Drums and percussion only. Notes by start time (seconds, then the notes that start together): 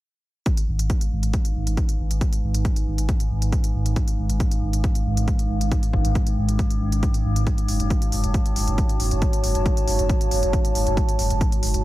0.46 kick, closed hi-hat
0.57 closed hi-hat
0.79 closed hi-hat
0.90 kick, closed hi-hat
1.01 closed hi-hat
1.23 closed hi-hat
1.33 kick, closed hi-hat
1.45 closed hi-hat
1.67 closed hi-hat
1.77 kick, closed hi-hat
1.89 closed hi-hat
2.11 closed hi-hat
2.21 kick, closed hi-hat
2.33 closed hi-hat
2.54 closed hi-hat
2.65 kick, closed hi-hat
2.76 closed hi-hat
2.98 closed hi-hat
3.09 kick, closed hi-hat
3.20 closed hi-hat
3.42 closed hi-hat
3.52 kick, closed hi-hat
3.64 closed hi-hat
3.86 closed hi-hat
3.96 kick, closed hi-hat
4.08 closed hi-hat
4.29 closed hi-hat
4.40 kick, closed hi-hat
4.51 closed hi-hat
4.73 closed hi-hat
4.84 kick, closed hi-hat
4.95 closed hi-hat
5.17 closed hi-hat
5.28 kick, closed hi-hat
5.39 closed hi-hat
5.61 closed hi-hat
5.71 kick, closed hi-hat
5.83 closed hi-hat
5.93 kick
6.05 closed hi-hat
6.15 kick, closed hi-hat
6.27 closed hi-hat
6.49 closed hi-hat
6.59 kick, closed hi-hat
6.71 closed hi-hat
6.92 closed hi-hat
7.03 kick, closed hi-hat
7.14 closed hi-hat
7.36 closed hi-hat
7.47 kick, closed hi-hat
7.58 closed hi-hat
7.68 open hi-hat
7.80 closed hi-hat
7.90 kick, closed hi-hat
8.02 closed hi-hat
8.12 open hi-hat
8.24 closed hi-hat
8.34 kick, closed hi-hat
8.46 closed hi-hat
8.56 open hi-hat
8.68 closed hi-hat
8.78 kick, closed hi-hat
8.89 closed hi-hat
9.00 open hi-hat
9.11 closed hi-hat
9.22 kick, closed hi-hat
9.33 closed hi-hat
9.44 open hi-hat
9.55 closed hi-hat
9.66 kick, closed hi-hat
9.77 closed hi-hat
9.88 open hi-hat
9.99 closed hi-hat
10.09 kick, closed hi-hat
10.21 closed hi-hat
10.31 open hi-hat
10.43 closed hi-hat
10.53 kick, closed hi-hat
10.65 closed hi-hat
10.75 open hi-hat
10.87 closed hi-hat
10.97 kick, closed hi-hat
11.09 closed hi-hat
11.19 open hi-hat
11.30 closed hi-hat
11.41 kick, closed hi-hat
11.52 closed hi-hat
11.63 open hi-hat
11.74 closed hi-hat